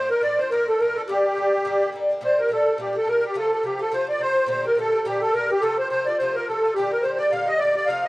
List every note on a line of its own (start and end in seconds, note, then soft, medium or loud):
0.00 0.10 A2 medium
0.00 0.11 F3 medium
0.09 0.22 F3 soft
0.09 0.23 A3 soft
0.09 0.22 D4 medium
0.09 0.22 A#4 medium
0.21 0.38 A2 medium
0.21 0.39 F3 medium
0.21 0.39 A3 medium
0.21 0.40 D5 medium
0.25 0.38 D4 medium
0.38 0.51 F3 soft
0.38 0.51 A3 soft
0.38 0.51 D4 medium
0.38 0.50 C5 medium
0.51 0.68 A2 medium
0.51 0.68 F3 medium
0.51 0.68 A3 medium
0.51 0.67 D4 medium
0.51 0.67 A#4 medium
0.68 0.81 F3 soft
0.68 0.81 A3 soft
0.68 0.80 D4 soft
0.68 0.80 A4 medium
0.80 0.96 A2 medium
0.80 0.97 F3 medium
0.80 0.97 A3 medium
0.80 0.97 A#4 medium
0.84 0.96 D4 medium
0.96 1.09 F3 soft
0.96 1.09 A3 soft
0.96 1.09 D4 medium
0.96 1.02 A4 medium
1.08 1.24 G2 medium
1.08 1.25 D3 medium
1.08 1.24 A#3 medium
1.08 1.22 D4 medium
1.08 1.90 G4 medium
1.24 1.35 D3 soft
1.24 1.36 A#3 soft
1.24 1.36 D4 soft
1.35 1.52 G2 medium
1.35 1.53 D3 medium
1.35 1.53 A#3 medium
1.35 1.51 D4 medium
1.52 1.65 A#3 medium
1.52 1.65 D4 medium
1.56 1.64 D3 soft
1.65 1.81 G2 medium
1.65 1.81 D3 medium
1.65 1.81 A#3 medium
1.65 1.79 D4 medium
1.80 1.93 D3 soft
1.80 1.94 A#3 medium
1.80 1.93 D4 medium
1.92 2.09 G2 medium
1.92 2.10 D3 medium
1.92 2.10 A#3 medium
1.92 2.08 D4 medium
2.09 2.21 D3 medium
2.09 2.22 A#3 medium
2.09 2.21 D4 medium
2.21 2.38 A#2 medium
2.21 2.38 G3 medium
2.21 2.37 A3 medium
2.21 2.35 D4 medium
2.21 2.40 C5 medium
2.37 2.49 G3 soft
2.37 2.50 A3 soft
2.37 2.50 D4 soft
2.37 2.50 A#4 medium
2.49 2.66 A#2 medium
2.49 2.66 G3 medium
2.49 2.66 A3 medium
2.49 2.64 D4 medium
2.49 2.78 A4 medium
2.65 2.77 G3 soft
2.65 2.78 A3 soft
2.65 2.78 D4 soft
2.78 2.95 A#2 medium
2.78 2.95 G3 medium
2.78 2.94 A3 medium
2.78 2.92 D4 medium
2.78 2.97 G4 medium
2.93 3.07 A3 soft
2.93 3.06 D4 soft
2.93 3.08 A4 medium
2.97 3.06 G3 soft
3.05 3.22 A#2 medium
3.05 3.23 G3 soft
3.05 3.22 A3 soft
3.05 3.20 D4 medium
3.05 3.25 A#4 medium
3.21 3.35 G3 soft
3.21 3.34 A3 soft
3.21 3.34 D4 medium
3.25 3.36 G4 medium
3.34 3.51 C3 medium
3.34 3.52 F3 medium
3.34 3.52 A3 medium
3.34 3.49 F4 medium
3.38 3.51 A4 medium
3.50 3.63 F3 soft
3.50 3.64 A3 soft
3.50 3.63 F4 soft
3.50 3.64 A4 medium
3.63 3.80 C3 medium
3.63 3.80 F3 medium
3.63 3.79 A3 medium
3.63 3.78 F4 medium
3.63 3.81 G4 medium
3.79 3.91 F3 soft
3.79 3.92 A3 soft
3.79 3.92 F4 medium
3.79 3.92 A4 medium
3.92 4.08 C3 medium
3.92 4.09 F3 medium
3.92 4.08 A3 medium
3.92 4.06 F4 medium
3.92 4.08 C5 medium
4.07 4.19 F3 soft
4.07 4.20 A3 soft
4.07 4.20 F4 medium
4.07 4.21 D5 medium
4.19 4.36 C3 soft
4.19 4.37 F3 medium
4.19 4.36 A3 medium
4.19 4.47 C5 loud
4.23 4.34 F4 soft
4.35 4.47 F3 soft
4.35 4.47 A3 soft
4.35 4.48 F4 soft
4.46 4.64 A#2 medium
4.46 4.65 D3 medium
4.46 4.65 A3 medium
4.46 4.63 G4 medium
4.46 4.65 C5 medium
4.64 4.76 D3 soft
4.64 4.77 A3 soft
4.64 4.77 G4 medium
4.64 4.77 A#4 medium
4.75 4.92 A#2 medium
4.75 4.94 D3 medium
4.75 4.93 A3 medium
4.79 4.91 G4 medium
4.79 5.05 A4 medium
4.92 5.05 D3 soft
4.92 5.05 A3 soft
4.92 5.05 G4 medium
5.05 5.22 A#2 medium
5.05 5.22 D3 medium
5.05 5.22 A3 medium
5.05 5.21 G4 medium
5.21 5.33 D3 soft
5.21 5.34 A3 soft
5.21 5.34 G4 medium
5.21 5.34 A4 medium
5.34 5.50 A#2 medium
5.34 5.50 D3 medium
5.34 5.51 A3 soft
5.34 5.49 G4 medium
5.34 5.51 A#4 medium
5.50 5.62 D3 soft
5.50 5.62 A3 soft
5.50 5.62 G4 medium
5.50 5.63 G4 medium
5.62 5.78 C3 medium
5.62 5.79 F3 medium
5.62 5.78 A3 medium
5.62 5.76 F4 medium
5.62 5.77 A4 medium
5.77 5.91 A3 soft
5.77 5.90 F4 soft
5.77 5.88 C5 medium
5.81 5.90 F3 soft
5.90 6.07 C3 medium
5.90 6.07 F3 medium
5.90 6.08 A3 medium
5.90 6.06 F4 medium
5.90 6.07 C5 medium
6.06 6.20 A3 soft
6.06 6.19 F4 medium
6.06 6.17 D5 medium
6.11 6.20 F3 soft
6.18 6.36 C3 medium
6.18 6.36 F3 medium
6.18 6.36 A3 medium
6.18 6.35 C5 medium
6.23 6.35 F4 medium
6.35 6.49 A3 soft
6.35 6.48 F4 soft
6.35 6.48 A#4 medium
6.40 6.48 F3 soft
6.48 6.64 C3 soft
6.48 6.65 F3 medium
6.48 6.65 A3 soft
6.48 6.64 F4 soft
6.48 6.74 A4 medium
6.65 6.77 F3 soft
6.65 6.77 A3 soft
6.65 6.76 F4 medium
6.75 6.92 A#2 medium
6.75 6.93 D3 medium
6.75 6.92 A3 medium
6.75 6.92 G4 medium
6.79 6.90 G4 medium
6.91 7.03 D3 soft
6.91 7.04 A3 soft
6.91 7.04 G4 soft
6.91 7.03 A#4 medium
7.02 7.19 A#2 soft
7.02 7.20 D3 medium
7.02 7.19 A3 medium
7.02 7.17 G4 medium
7.02 7.18 C5 medium
7.18 7.31 D3 soft
7.18 7.32 A3 medium
7.18 7.31 G4 medium
7.18 7.32 D5 medium
7.31 7.47 A#2 medium
7.31 7.48 D3 medium
7.31 7.48 A3 medium
7.31 7.46 G4 medium
7.31 7.49 F5 medium
7.46 7.61 A3 soft
7.46 7.60 G4 soft
7.46 7.60 D#5 medium
7.51 7.59 D3 soft
7.58 7.76 A#2 soft
7.58 7.77 D3 soft
7.58 7.76 A3 medium
7.58 7.75 D5 loud
7.63 7.74 G4 soft
7.75 7.89 D3 soft
7.75 7.89 A3 soft
7.75 7.88 G4 medium
7.75 7.89 D5 loud
7.87 8.04 C3 medium
7.87 8.05 F3 medium
7.87 8.03 A3 medium
7.87 8.01 F4 medium
7.87 8.04 F5 medium
8.03 8.08 F4 soft
8.03 8.08 D#5 medium